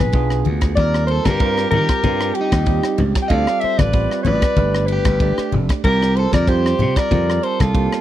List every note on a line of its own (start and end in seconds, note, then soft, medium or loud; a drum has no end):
0.00 0.11 A#1 medium
0.00 0.10 B3 medium
0.00 0.11 D4 medium
0.00 0.11 F4 medium
0.00 0.10 G#4 medium
0.00 0.47 G#4 medium
0.00 0.45 B4 medium
0.00 high conga medium
0.00 low conga medium
0.12 0.42 B1 medium
0.12 0.74 B3 medium
0.12 0.74 D4 medium
0.12 0.74 F4 medium
0.12 0.74 G#4 medium
0.12 kick loud
0.12 ride medium
0.30 cross-stick medium
0.45 0.74 D2 medium
0.45 ride soft
0.45 high conga medium
0.61 kick medium
0.61 cross-stick medium
0.61 ride medium
0.76 1.18 D#2 medium
0.76 1.38 G3 medium
0.76 1.38 C4 medium
0.76 1.38 F4 medium
0.76 1.08 A#4 medium
0.76 1.06 D5 loud
0.76 kick medium
0.76 ride medium
0.80 1.38 A#4 medium
0.94 cross-stick medium
1.07 1.27 C5 medium
1.07 ride soft
1.11 1.26 A4 medium
1.25 1.65 G2 medium
1.25 1.70 A#4 medium
1.25 kick medium
1.25 cross-stick medium
1.25 ride medium
1.25 high conga medium
1.30 1.74 G4 medium
1.40 2.00 G3 medium
1.40 2.00 C4 medium
1.40 2.01 F4 medium
1.40 2.00 A#4 medium
1.40 kick loud
1.40 ride soft
1.58 cross-stick medium
1.71 1.87 D#3 medium
1.71 2.36 A#4 medium
1.71 ride medium
1.71 high conga medium
1.71 low conga medium
1.77 2.34 G4 medium
1.89 muted slap bass stroke soft
1.89 kick medium
1.89 cross-stick medium
1.89 ride medium
2.03 2.31 G2 medium
2.03 2.63 G3 medium
2.03 2.64 C4 medium
2.03 2.64 F4 medium
2.03 2.64 G4 medium
2.03 kick medium
2.03 ride soft
2.03 high conga medium
2.21 cross-stick medium
2.35 2.98 G4 medium
2.35 ride medium
2.41 3.01 D#4 medium
2.52 2.79 D#2 medium
2.52 kick medium
2.52 cross-stick medium
2.52 ride medium
2.66 3.27 G3 medium
2.66 3.27 C4 medium
2.66 3.27 F4 medium
2.66 3.27 G4 medium
2.66 kick medium
2.66 ride medium
2.83 cross-stick medium
2.98 3.13 C#2 medium
2.98 ride medium
2.98 low conga medium
3.15 kick medium
3.15 cross-stick medium
3.15 ride medium
3.22 3.31 G5 medium
3.28 3.45 D2 medium
3.28 3.91 G3 medium
3.28 3.91 C4 medium
3.28 3.91 F4 medium
3.28 3.91 A4 medium
3.28 3.33 D#5 medium
3.28 3.62 F5 loud
3.28 kick medium
3.28 ride medium
3.33 3.64 D5 medium
3.47 cross-stick medium
3.60 3.80 E5 medium
3.60 muted slap bass stroke soft
3.60 ride medium
3.64 3.80 C5 medium
3.78 4.06 A1 medium
3.78 4.26 B4 medium
3.78 4.23 D5 medium
3.78 kick medium
3.78 cross-stick medium
3.78 ride medium
3.78 high conga medium
3.93 4.54 G3 medium
3.93 4.54 C4 medium
3.93 4.54 F4 medium
3.93 4.54 B4 medium
3.93 kick medium
3.93 ride medium
4.11 cross-stick medium
4.23 4.41 A1 medium
4.23 4.86 B4 medium
4.23 4.88 D5 medium
4.23 ride medium
4.23 high conga medium
4.23 low conga medium
4.42 kick medium
4.42 cross-stick medium
4.42 ride medium
4.56 4.99 G1 medium
4.56 5.17 A3 medium
4.56 5.17 D4 medium
4.56 5.18 G4 medium
4.56 5.17 B4 medium
4.56 kick medium
4.56 ride medium
4.56 high conga medium
4.75 cross-stick medium
4.87 5.51 B4 medium
4.87 ride medium
4.93 5.54 G4 medium
5.05 5.32 G1 medium
5.05 kick medium
5.05 cross-stick medium
5.05 ride medium
5.05 high conga medium
5.20 5.81 A3 medium
5.20 5.81 D4 medium
5.20 5.81 G4 medium
5.20 5.81 D5 medium
5.20 kick loud
5.20 ride soft
5.38 muted slap bass stroke soft
5.38 cross-stick medium
5.52 5.67 F1 medium
5.52 ride medium
5.52 low conga medium
5.69 kick medium
5.69 cross-stick medium
5.69 ride medium
5.84 6.26 C2 medium
5.84 6.45 G3 medium
5.84 6.45 C4 medium
5.84 6.45 F4 medium
5.84 6.15 G4 medium
5.84 6.17 A#4 medium
5.84 6.45 A#4 medium
5.84 kick medium
5.84 ride medium
6.02 cross-stick medium
6.16 6.33 A4 medium
6.16 6.33 C5 medium
6.16 ride soft
6.33 6.72 F2 medium
6.33 6.49 A#4 medium
6.33 6.50 D5 medium
6.33 kick medium
6.33 cross-stick medium
6.33 ride medium
6.33 high conga medium
6.47 7.08 G3 medium
6.47 7.08 C4 medium
6.47 7.08 F4 medium
6.47 6.98 G4 medium
6.47 7.08 C5 medium
6.47 6.99 C5 medium
6.47 kick medium
6.47 ride medium
6.66 cross-stick medium
6.79 6.95 C3 medium
6.79 ride medium
6.79 low conga medium
6.96 7.46 A#4 medium
6.96 7.45 D5 medium
6.96 muted slap bass stroke soft
6.96 kick medium
6.96 cross-stick medium
6.96 ride medium
7.11 7.38 F2 medium
7.11 7.71 G3 medium
7.11 7.71 C4 medium
7.11 7.71 F4 medium
7.11 7.71 A#4 medium
7.11 kick medium
7.11 ride medium
7.11 high conga medium
7.30 cross-stick medium
7.43 7.61 A4 medium
7.43 7.63 C5 medium
7.43 ride medium
7.60 7.87 C2 medium
7.60 8.01 F4 medium
7.60 8.01 A4 medium
7.60 kick medium
7.60 cross-stick medium
7.60 ride medium
7.60 high conga medium
7.74 8.01 G3 medium
7.74 8.01 A#3 medium
7.74 8.01 C4 medium
7.74 8.01 F4 medium
7.74 kick medium
7.74 ride soft
7.92 cross-stick medium